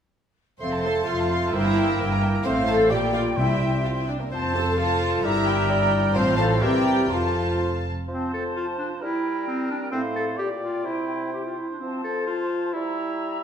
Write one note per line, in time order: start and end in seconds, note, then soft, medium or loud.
0.59 1.02 F1 medium
0.59 1.02 F2 medium
0.59 1.56 A3 medium
0.59 0.83 C4 medium
0.59 1.50 A4 medium
0.59 1.55 C5 medium
0.59 0.82 C5 medium
0.59 1.50 F5 medium
0.59 0.72 C6 soft
0.73 0.84 A5 soft
0.83 0.95 A4 medium
0.83 1.08 A4 medium
0.83 1.07 A5 medium
0.83 0.96 C6 soft
0.95 1.07 A5 medium
1.06 1.49 F1 medium
1.06 1.48 F2 medium
1.06 1.53 F4 medium
1.06 1.54 F4 medium
1.06 1.53 F5 medium
1.06 1.19 C6 soft
1.20 1.31 A5 soft
1.32 1.43 C6 medium
1.44 1.55 A5 soft
1.53 1.95 G1 medium
1.53 1.95 G2 medium
1.53 2.45 A#3 medium
1.53 2.23 E4 medium
1.53 2.22 E4 medium
1.53 2.44 A#4 medium
1.53 2.02 C5 medium
1.53 2.21 E5 medium
1.53 2.45 G5 medium
1.53 1.66 G5 medium
1.66 1.77 A#5 medium
1.76 1.88 G5 medium
1.89 2.00 A#5 medium
2.00 2.40 G1 medium
2.00 2.40 G2 medium
2.00 2.49 A#4 medium
2.00 2.11 G5 medium
2.12 2.23 A#5 medium
2.23 2.34 G5 medium
2.34 2.45 A#5 medium
2.44 2.88 A1 medium
2.44 2.88 A2 medium
2.44 2.93 A3 medium
2.44 2.66 C4 medium
2.44 2.52 C5 medium
2.44 2.91 C5 medium
2.44 2.93 C5 medium
2.44 2.90 F5 medium
2.44 2.88 F5 medium
2.67 2.90 A4 loud
2.67 2.91 A4 medium
2.67 2.75 A5 medium
2.90 3.37 A#1 medium
2.90 3.37 A#2 medium
2.90 4.08 G3 medium
2.90 3.14 G4 medium
2.90 3.38 D5 medium
2.90 3.37 D5 medium
2.90 2.98 G5 medium
2.90 4.08 G5 medium
2.90 3.35 G5 medium
3.13 3.21 F4 medium
3.13 3.25 F4 medium
3.13 3.21 F5 medium
3.36 4.11 C2 soft
3.36 4.04 C3 medium
3.36 4.11 C3 medium
3.36 3.83 E4 medium
3.36 4.07 C5 medium
3.36 3.83 E5 medium
3.36 4.07 E5 medium
3.36 4.09 G5 medium
3.84 3.89 F4 medium
3.84 3.90 F4 medium
3.84 3.89 F5 medium
3.96 4.08 E4 medium
3.96 4.03 E4 soft
3.96 4.08 E5 soft
4.08 4.20 D4 medium
4.08 4.12 D5 medium
4.20 4.32 A#3 soft
4.20 4.31 A#4 soft
4.31 5.20 F1 medium
4.31 5.20 F2 medium
4.31 4.75 F3 medium
4.31 4.54 C4 medium
4.31 4.55 C4 medium
4.31 4.75 C5 medium
4.31 4.39 C5 medium
4.31 4.75 C5 medium
4.31 4.75 A5 medium
4.54 4.78 A4 medium
4.54 4.66 A4 medium
4.54 4.77 A5 medium
4.77 5.24 F3 medium
4.77 5.23 F4 medium
4.77 5.24 F4 medium
4.77 5.23 A4 medium
4.77 5.26 C5 medium
4.77 5.23 F5 medium
4.77 5.23 A5 medium
5.22 6.15 G1 medium
5.22 6.15 G2 medium
5.22 6.14 G3 medium
5.22 5.91 E4 medium
5.22 5.93 E4 medium
5.22 5.72 G4 medium
5.22 6.14 A#4 medium
5.22 5.90 E5 medium
5.22 6.15 A#5 medium
5.22 5.47 A#5 medium
5.47 6.15 G5 medium
5.70 6.18 D5 loud
6.14 6.62 A1 medium
6.14 6.62 A2 medium
6.14 6.63 F3 medium
6.14 6.37 C4 medium
6.14 6.37 C4 loud
6.14 6.36 C5 medium
6.14 6.63 C5 medium
6.14 6.63 F5 medium
6.14 6.59 A5 medium
6.36 6.62 A4 loud
6.36 6.62 A4 medium
6.36 6.44 A5 medium
6.60 7.11 C2 medium
6.60 7.11 C3 medium
6.60 7.12 E3 medium
6.60 7.11 G4 medium
6.60 7.10 G4 medium
6.60 7.11 A#4 medium
6.60 7.12 D5 medium
6.60 6.86 E5 medium
6.60 7.09 G5 medium
6.60 7.11 A#5 medium
6.86 6.94 G5 medium
7.10 7.87 F1 soft
7.10 7.87 F2 medium
7.10 7.85 F3 medium
7.10 7.85 F4 medium
7.10 7.83 F4 medium
7.10 7.84 A4 medium
7.10 7.84 C5 medium
7.10 7.84 F5 medium
7.10 7.86 A5 medium
7.10 7.85 A5 medium
8.08 9.03 F3 medium
8.08 8.31 C4 medium
8.08 9.03 C5 soft
8.08 8.98 A5 soft
8.33 8.44 A4 medium
8.56 8.67 F4 medium
8.79 8.89 D4 medium
9.01 9.92 G3 medium
9.01 9.46 E4 medium
9.01 9.91 A#4 medium
9.01 9.93 G5 medium
9.48 9.70 C4 medium
9.71 9.81 D4 medium
9.91 10.37 A2 medium
9.91 10.02 C4 medium
9.91 10.38 C5 medium
9.91 10.38 F5 medium
10.15 10.26 A4 medium
10.36 10.86 A#2 soft
10.36 10.49 G4 medium
10.36 10.86 D5 soft
10.36 11.57 G5 soft
10.62 10.87 F4 medium
10.85 11.57 C3 soft
10.85 11.32 E4 medium
10.85 12.73 C5 soft
11.33 11.44 G4 medium
11.45 11.59 F4 medium
11.57 11.70 E4 medium
11.70 11.82 D4 soft
11.80 12.76 F3 medium
11.80 12.03 C4 medium
11.80 12.70 A5 soft
12.04 12.26 A4 medium
12.27 12.74 F4 medium
12.73 13.43 G3 medium
12.73 13.42 E4 medium
12.73 13.43 E5 medium
12.73 13.43 A#5 medium